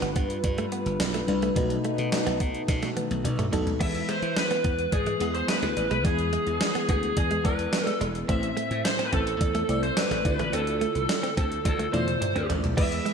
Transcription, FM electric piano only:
0.00 0.12 G2 medium
0.00 0.37 G3 medium
0.00 0.37 D4 medium
0.00 0.37 F4 medium
0.00 0.38 B4 loud
1.27 1.54 G3 medium
1.27 1.54 D4 medium
1.27 1.54 F4 medium
1.27 1.55 B4 medium
1.56 2.36 B2 medium
1.56 2.61 A3 medium
1.56 2.62 D#4 medium
1.56 2.62 F#4 medium
1.56 2.62 B4 medium
3.52 3.79 A3 medium
3.52 3.79 D#4 medium
3.52 3.79 F#4 medium
3.52 3.79 A4 medium
3.80 4.61 E3 medium
3.80 4.86 G#3 medium
3.80 4.86 B3 medium
3.80 4.86 E4 medium
3.80 4.86 B4 medium
5.20 5.99 G#3 medium
5.20 6.00 B3 medium
5.20 6.00 E4 medium
5.20 6.00 G#4 medium
6.04 6.85 E3 medium
6.04 7.10 G#3 medium
6.04 7.10 B3 medium
6.04 7.10 E4 medium
6.04 7.10 B4 medium
7.44 8.24 G#3 medium
7.44 8.24 B3 medium
7.44 8.24 E4 medium
7.44 8.24 D5 medium
8.29 9.09 A2 medium
8.29 9.34 A3 medium
8.29 9.34 C4 medium
8.29 9.35 E4 medium
8.29 9.35 C5 medium
9.69 10.23 A3 medium
9.69 10.25 C4 medium
9.69 10.24 E4 medium
9.69 10.24 D5 medium
10.25 11.05 D3 medium
10.25 11.30 A3 medium
10.25 11.31 E4 medium
10.25 11.31 F4 medium
10.25 11.31 D5 medium
11.93 12.72 A3 medium
11.93 12.72 E4 medium
11.93 12.73 F4 medium
11.93 12.73 D5 medium
12.77 13.13 E3 medium
12.77 13.13 G#3 medium
12.77 13.13 B3 medium
12.77 13.13 E4 medium
12.77 13.13 B4 medium

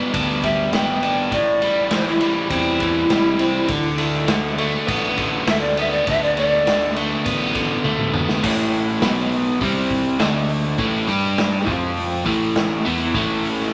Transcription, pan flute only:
0.43 0.72 E5 medium
0.74 1.31 G5 medium
1.32 1.97 D5 medium
1.95 2.07 C5 medium
2.08 2.50 E4 medium
2.52 4.25 E4 loud
5.48 5.63 E5 medium
5.61 5.81 D5 medium
5.79 5.93 E5 medium
5.92 6.05 D5 medium
6.09 6.24 E5 loud
6.23 6.36 D5 loud
6.38 6.94 D5 loud

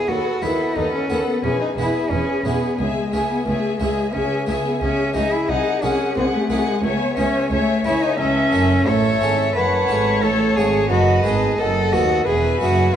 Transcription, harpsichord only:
0.07 0.38 D#2 soft
0.42 0.73 D#2 soft
0.42 0.91 B3 soft
0.42 0.91 F#4 soft
0.42 0.91 A4 soft
0.76 1.06 D#2 soft
1.10 1.40 D#2 soft
1.10 1.34 B3 soft
1.10 1.34 F#4 soft
1.10 1.35 A4 soft
1.44 1.74 E2 soft
1.78 2.08 E2 soft
1.78 2.27 G#3 soft
1.78 2.27 B3 soft
1.78 2.27 E4 soft
2.11 2.42 E2 soft
2.45 2.75 E2 soft
2.45 2.69 G#3 soft
2.45 2.70 B3 soft
2.45 2.70 E4 soft
2.79 3.09 C#2 soft
3.13 3.43 C#2 soft
3.13 3.62 G#3 soft
3.13 3.62 C#4 soft
3.13 3.62 E4 soft
3.46 3.76 C#2 soft
3.80 4.10 C#2 soft
3.80 4.04 G#3 soft
3.80 4.05 C#4 soft
3.80 4.05 E4 soft
4.13 4.44 C#2 soft
4.47 4.78 C#2 soft
4.47 4.96 G#3 soft
4.47 4.96 C#4 soft
4.47 4.96 E4 soft
4.81 5.12 C#2 soft
5.14 5.45 C#2 soft
5.14 5.39 G#3 soft
5.14 5.39 C#4 soft
5.14 5.39 E4 soft
5.48 5.79 C2 soft
5.82 6.13 C2 soft
5.82 6.31 G#3 soft
5.82 6.31 D#4 soft
5.82 6.31 F#4 soft
6.16 6.46 C2 soft
6.50 6.80 C2 medium
6.50 6.74 G#3 soft
6.50 6.75 D#4 soft
6.50 6.75 F#4 soft
6.84 7.14 C#2 soft
7.17 7.47 C#2 soft
7.17 7.66 G#3 soft
7.17 7.66 E4 soft
7.51 7.82 C#2 soft
7.84 8.15 C#2 soft
7.84 8.09 G#3 soft
7.84 8.09 E4 soft
8.18 8.49 C#2 soft
8.52 8.83 F#2 soft
8.52 9.02 A3 soft
8.52 9.02 C#4 soft
8.52 9.02 E4 soft
8.86 9.18 A2 soft
9.21 9.52 G#2 medium
9.21 9.45 A3 soft
9.21 9.46 C#4 soft
9.21 9.46 E4 soft
9.55 9.86 F#2 soft
9.88 10.19 G#2 soft
9.88 10.37 A3 soft
9.88 10.38 C#4 soft
9.88 10.38 F#4 soft
10.23 10.54 A2 soft
10.57 10.88 G#2 soft
10.57 10.82 A3 soft
10.57 10.82 C#4 soft
10.57 10.82 F#4 soft
10.90 11.21 F#2 soft
11.24 11.55 G#2 medium
11.24 11.73 A3 soft
11.24 11.73 B3 soft
11.24 11.74 D#4 soft
11.58 11.89 F#2 medium
11.93 12.23 D#2 medium
11.93 12.17 A3 soft
11.93 12.18 B3 soft
11.93 12.18 D#4 soft
12.27 12.58 E2 soft
12.61 12.91 F#2 soft
12.61 12.96 G#3 soft
12.61 12.96 B3 soft
12.61 12.96 E4 soft

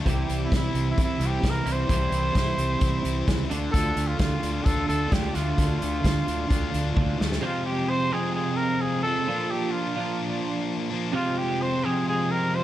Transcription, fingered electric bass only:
0.07 0.23 C2 medium
0.30 0.46 C2 medium
0.52 0.69 C2 medium
0.74 0.92 C2 medium
0.98 1.15 C2 medium
1.20 1.37 C2 medium
1.44 1.61 C2 medium
1.66 1.83 C2 medium
1.90 2.07 C2 medium
2.12 2.29 C2 medium
2.36 2.53 C2 medium
2.58 2.75 C2 medium
2.82 2.99 C2 medium
3.05 3.22 C2 medium
3.28 3.45 C#2 medium
3.51 3.68 D2 medium
3.74 3.91 D2 medium
3.97 4.14 D2 medium
4.20 4.37 D2 medium
4.43 4.60 D2 medium
4.66 4.83 D2 medium
4.89 5.06 D2 medium
5.12 5.29 D2 medium
5.36 5.53 D2 medium
5.59 5.76 D2 medium
5.83 5.99 D2 medium
6.05 6.22 D2 medium
6.28 6.45 D2 medium
6.51 6.68 D2 medium
6.74 6.91 D2 medium
6.97 7.14 D2 medium
7.21 7.38 D2 medium

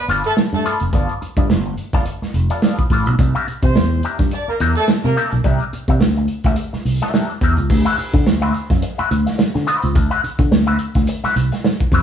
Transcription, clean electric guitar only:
0.09 0.27 B3 medium
0.09 0.24 F4 loud
0.09 0.24 A4 loud
0.09 0.23 D5 medium
0.24 muted clean electric guitar stroke soft
0.37 muted clean electric guitar stroke soft
0.53 muted clean electric guitar stroke soft
0.65 0.84 B3 medium
0.65 0.81 F4 medium
0.65 0.80 A4 medium
0.65 0.80 D5 medium
0.81 muted clean electric guitar stroke soft
0.93 1.12 B3 medium
0.93 1.12 F4 medium
0.93 1.12 A4 medium
0.93 1.13 D5 loud
1.21 muted clean electric guitar stroke soft
1.37 1.48 B3 soft
1.37 1.49 F4 soft
1.37 1.49 A4 medium
1.37 1.49 D5 medium
1.66 muted clean electric guitar stroke soft
1.94 2.06 B3 medium
1.94 2.06 F4 medium
1.94 2.06 A4 medium
1.94 2.07 D5 medium
2.07 muted clean electric guitar stroke soft
2.22 muted clean electric guitar stroke soft
2.50 2.61 B3 medium
2.50 2.62 F4 medium
2.50 2.63 A4 medium
2.50 2.63 D5 medium
2.63 2.81 B3 medium
2.63 2.79 F4 medium
2.63 2.78 A4 medium
2.63 2.78 D5 medium
2.79 muted clean electric guitar stroke soft
2.91 3.06 B3 medium
2.91 3.07 F4 medium
2.91 3.07 A4 medium
2.91 3.06 D5 medium
3.20 muted clean electric guitar stroke soft
3.35 3.47 D4 medium
3.35 3.47 G4 medium
3.35 3.48 A#4 medium
3.35 3.48 E5 medium
3.48 muted clean electric guitar stroke soft
3.64 muted clean electric guitar stroke soft
3.76 muted clean electric guitar stroke soft
4.04 4.19 D4 medium
4.04 4.20 G4 medium
4.04 4.19 A#4 medium
4.04 4.19 E5 medium
4.20 muted clean electric guitar stroke medium
4.33 muted clean electric guitar stroke soft
4.49 muted clean electric guitar stroke medium
4.60 4.79 D4 medium
4.60 4.77 G4 loud
4.60 4.77 A#4 loud
4.60 4.76 E5 loud
4.77 muted clean electric guitar stroke soft
4.89 muted clean electric guitar stroke soft
5.04 muted clean electric guitar stroke soft
5.16 5.35 D4 medium
5.16 5.33 G4 medium
5.16 5.32 A#4 medium
5.16 5.32 E5 loud
5.33 muted clean electric guitar stroke soft
5.44 5.63 D4 medium
5.44 5.64 G4 loud
5.44 5.64 A#4 loud
5.44 5.64 E5 loud
5.73 muted clean electric guitar stroke soft
5.89 6.00 D4 medium
5.89 6.01 G4 medium
5.89 6.01 A#4 medium
5.89 6.01 E5 medium
6.02 muted clean electric guitar stroke soft
6.17 muted clean electric guitar stroke soft
6.46 6.57 D4 medium
6.46 6.57 G4 medium
6.46 6.57 A#4 medium
6.46 6.58 E5 medium
6.58 muted clean electric guitar stroke soft
6.73 muted clean electric guitar stroke soft
7.02 7.13 D4 medium
7.02 7.13 G4 medium
7.02 7.14 A#4 medium
7.02 7.14 E5 medium
7.14 7.33 D4 medium
7.14 7.30 G4 medium
7.14 7.29 A#4 medium
7.14 7.29 E5 medium
7.30 muted clean electric guitar stroke medium
7.42 7.57 D4 medium
7.42 7.58 G4 medium
7.42 7.58 A#4 medium
7.42 7.57 E5 medium
7.58 muted clean electric guitar stroke medium
7.70 muted clean electric guitar stroke soft
7.85 7.97 C4 medium
7.85 7.98 F#4 medium
7.85 7.98 B4 medium
7.85 7.98 E5 medium
7.98 muted clean electric guitar stroke soft
8.14 muted clean electric guitar stroke soft
8.26 muted clean electric guitar stroke soft
8.42 8.53 C4 medium
8.42 8.54 F#4 medium
8.42 8.54 B4 medium
8.42 8.55 E5 medium
8.54 muted clean electric guitar stroke soft
8.71 muted clean electric guitar stroke soft
8.83 muted clean electric guitar stroke soft
8.98 9.10 C4 medium
8.98 9.10 F#4 medium
8.98 9.11 B4 medium
8.98 9.11 E5 medium
9.11 muted clean electric guitar stroke medium
9.26 muted clean electric guitar stroke soft
9.38 muted clean electric guitar stroke soft
9.54 muted clean electric guitar stroke medium
9.67 9.88 C4 loud
9.67 9.83 F#4 medium
9.67 9.82 B4 loud
9.67 9.81 E5 loud
9.83 muted clean electric guitar stroke soft
9.95 muted clean electric guitar stroke soft
10.10 10.21 C4 medium
10.10 10.22 F#4 medium
10.10 10.22 B4 medium
10.10 10.22 E5 medium
10.22 muted clean electric guitar stroke soft
10.39 muted clean electric guitar stroke soft
10.51 muted clean electric guitar stroke soft
10.67 10.78 C4 medium
10.67 10.79 F#4 medium
10.67 10.79 B4 medium
10.67 10.80 E5 medium
10.79 muted clean electric guitar stroke soft
10.95 muted clean electric guitar stroke soft
11.08 muted clean electric guitar stroke medium
11.24 11.36 C4 medium
11.24 11.36 F#4 medium
11.24 11.37 B4 loud
11.24 11.37 E5 medium
11.37 muted clean electric guitar stroke soft
11.52 muted clean electric guitar stroke soft
11.65 muted clean electric guitar stroke soft
11.93 12.02 C4 medium
11.93 12.02 F#4 medium
11.93 12.02 B4 medium
11.93 12.02 E5 medium

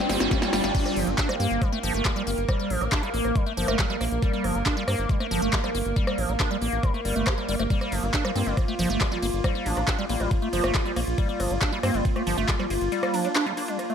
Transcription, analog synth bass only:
0.09 0.17 G1 loud
0.20 0.28 G1 medium
0.53 0.60 G1 loud
0.64 0.71 G1 medium
0.96 1.04 G1 loud
1.07 1.15 G1 medium
1.40 1.47 G2 loud
1.51 1.58 G1 medium
1.83 1.91 G1 medium
1.94 2.02 G1 medium
2.27 2.34 G1 loud
2.38 2.45 G1 medium
2.70 2.78 A1 loud
2.81 2.89 A1 medium
3.14 3.21 A1 loud
3.25 3.32 A1 medium
3.57 3.65 G1 medium
3.68 3.76 G1 medium
4.01 4.08 A#1 loud
4.12 4.19 A#1 medium
4.44 4.52 G1 loud
4.55 4.63 G1 medium
4.88 4.95 G2 loud
4.99 5.06 G1 medium
5.31 5.39 G1 medium
5.42 5.50 G1 medium
5.75 5.82 G1 medium
5.86 5.93 G1 medium
6.18 6.26 A1 loud
6.29 6.36 A1 medium
6.62 6.69 A1 loud
6.72 6.80 A1 medium
7.05 7.13 G1 medium
7.16 7.23 G1 medium
7.49 7.56 G1 medium
7.59 7.67 G1 medium
7.92 8.00 G1 medium
8.03 8.10 G1 medium
8.36 8.43 G2 medium
8.46 8.54 G1 medium
8.79 8.86 G1 medium
8.90 8.97 G1 medium
9.22 9.30 G1 loud
9.33 9.41 G1 medium
9.66 9.73 A1 loud
9.77 9.84 A1 medium
10.09 10.17 A1 loud
10.20 10.28 A1 medium
10.53 10.60 G1 medium
10.64 10.71 G1 medium
10.96 11.04 A#1 loud
11.07 11.15 A#1 medium
11.40 11.47 G1 medium
11.51 11.58 G1 medium
11.83 11.91 G2 loud
11.94 12.02 G1 medium
12.27 12.34 G1 medium
12.38 12.45 G1 medium
12.70 12.78 G1 loud
12.81 12.89 G1 medium

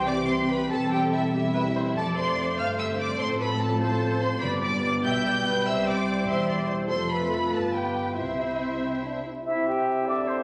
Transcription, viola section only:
0.09 0.71 G4 medium
0.71 1.32 A4 medium
1.34 1.42 G4 medium
1.53 1.61 B4 medium
1.75 1.83 C5 medium
1.96 2.56 D5 medium
2.58 3.18 C5 medium
3.19 3.79 A4 medium
3.80 4.41 C5 medium
4.42 5.05 D5 medium
5.06 5.26 E5 medium
5.27 5.46 D5 medium
5.47 5.66 B4 medium
5.67 6.28 C5 medium
6.27 6.47 E5 medium
6.48 6.68 D5 medium
6.68 6.89 C5 medium
6.88 7.50 A4 soft
7.53 8.17 B4 soft
8.17 9.12 C5 soft

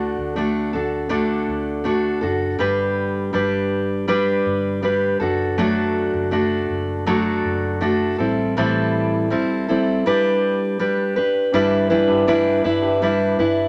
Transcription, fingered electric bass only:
0.00 0.14 D2 medium
0.18 0.70 D2 medium
0.74 1.44 D2 medium
1.48 2.18 D2 medium
2.22 2.57 F#1 medium
2.59 3.30 G1 medium
3.34 4.42 G1 medium
4.46 5.16 G1 medium
5.21 6.10 F#1 medium
6.14 6.66 F#1 medium
6.70 7.40 F#1 medium
7.45 8.15 F#1 medium
8.19 8.53 A1 medium
11.53 12.05 G1 medium
12.09 12.61 G1 medium
12.65 13.35 G1 medium
13.39 13.68 G1 medium

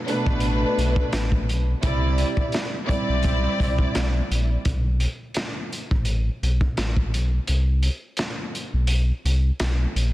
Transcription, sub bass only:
0.27 0.65 A1 loud
0.78 1.04 B1 medium
1.13 1.50 A1 loud
1.48 1.75 B1 medium
1.83 2.24 C2 loud
3.09 3.47 B1 loud
3.60 3.87 C2 loud
3.95 4.22 B1 loud
4.31 4.57 A#1 medium
4.66 5.07 B1 loud
5.91 6.30 A1 loud
6.42 6.69 B1 medium
6.78 7.14 A1 loud
7.13 7.39 B1 loud
7.48 7.89 C2 loud
8.73 9.12 B1 loud
9.25 9.51 C2 medium
9.60 9.86 B1 loud
9.95 10.13 A#1 medium

